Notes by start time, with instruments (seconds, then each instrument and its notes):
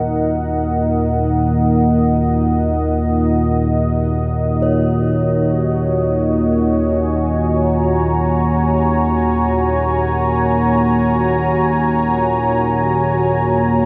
Already playing: synth drone D#2 A#2, analog synth pad D#4 A#4 D#5 F#5, singing bowl C#5
4.60 analog synth pad F#4, singing bowl C#5
5.31 analog synth pad C#5
6.88 analog synth pad G#5
7.54 analog synth pad A#5